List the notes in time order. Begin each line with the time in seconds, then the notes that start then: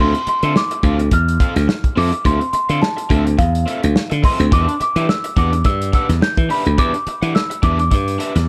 Already playing: C4
0.00 D2 F4 A4 E5 C6
0.15 muted overdriven electric guitar stroke, closed hi-hat
0.27 C6, muted slap bass stroke, muted overdriven electric guitar stroke, closed hi-hat
0.43 D3 C4 F4 A4 E5, closed hi-hat
0.56 D6, muted overdriven electric guitar stroke, snare
0.71 muted overdriven electric guitar stroke, closed hi-hat
0.83 D2 C4 F4 A4 F5, kick, closed hi-hat
0.99 muted overdriven electric guitar stroke, closed hi-hat
1.11 E2 F6, muted overdriven electric guitar stroke, kick, closed hi-hat
1.28 closed hi-hat
1.40 C4 F4 A4 F5, kick, closed hi-hat
1.56 D2, muted overdriven electric guitar stroke, snare, closed hi-hat
1.68 muted overdriven electric guitar stroke, snare
1.84 muted slap bass stroke, kick, closed hi-hat
1.96 F2 C4 F4 A4 E5 D6, open hi-hat
2.12 muted overdriven electric guitar stroke, closed hi-hat
2.25 D2 C4 F4 A4 E5 C6, kick, closed hi-hat
2.40 muted overdriven electric guitar stroke, closed hi-hat
2.53 C6, muted slap bass stroke, muted overdriven electric guitar stroke, closed hi-hat
2.69 D3 C4 F4 A4 F5, closed hi-hat
2.81 A5, muted overdriven electric guitar stroke, snare
2.97 muted overdriven electric guitar stroke, closed hi-hat
3.09 D2 C4 F4 A4 E5, kick, closed hi-hat
3.26 muted overdriven electric guitar stroke, closed hi-hat
3.38 E2 F5, muted overdriven electric guitar stroke, kick, closed hi-hat
3.55 closed hi-hat
3.66 C4 F4 A4 E5, closed hi-hat
3.83 D2, muted overdriven electric guitar stroke, closed hi-hat
3.96 snare
4.10 D3, muted overdriven electric guitar stroke, closed hi-hat
4.23 C4 F4 A4 E5 C6, kick, open hi-hat
4.39 D2, muted overdriven electric guitar stroke, closed hi-hat
4.51 E2 D4 G4 B4 E5 D6, kick, closed hi-hat
4.68 muted overdriven electric guitar stroke, closed hi-hat
4.80 D6, muted overdriven electric guitar stroke, muted slap bass stroke, closed hi-hat
4.96 E3 D4 G4 B4 E5, closed hi-hat
5.09 E6, muted overdriven electric guitar stroke, snare
5.24 muted overdriven electric guitar stroke, closed hi-hat
5.37 E2 D4 G4 B4 F#5 D6, kick, closed hi-hat
5.52 muted overdriven electric guitar stroke, closed hi-hat
5.64 G2 E6, muted overdriven electric guitar stroke, kick, closed hi-hat
5.82 closed hi-hat
5.93 D4 G4 B4 F#5 E6, kick, closed hi-hat
6.09 E2, muted overdriven electric guitar stroke, snare, closed hi-hat
6.21 G6, muted overdriven electric guitar stroke, snare
6.37 E3, kick, closed hi-hat
6.49 D4 G4 B4 E5 B5, open hi-hat
6.65 D2, muted overdriven electric guitar stroke, closed hi-hat
6.78 E2 D4 G4 B4 E5 D6, kick, closed hi-hat
6.94 muted overdriven electric guitar stroke, closed hi-hat
7.07 muted slap bass stroke, muted overdriven electric guitar stroke, closed hi-hat
7.22 E3 D4 G4 B4 F#5, closed hi-hat
7.34 E6, muted overdriven electric guitar stroke, snare
7.50 muted overdriven electric guitar stroke, closed hi-hat
7.62 E2 D4 G4 B4 E5 D6, kick, closed hi-hat
7.79 D6, muted overdriven electric guitar stroke, closed hi-hat
7.91 G2, muted overdriven electric guitar stroke, kick, closed hi-hat
8.08 closed hi-hat
8.19 D4 G4 B4 E5, closed hi-hat
8.35 E2, muted overdriven electric guitar stroke, snare, closed hi-hat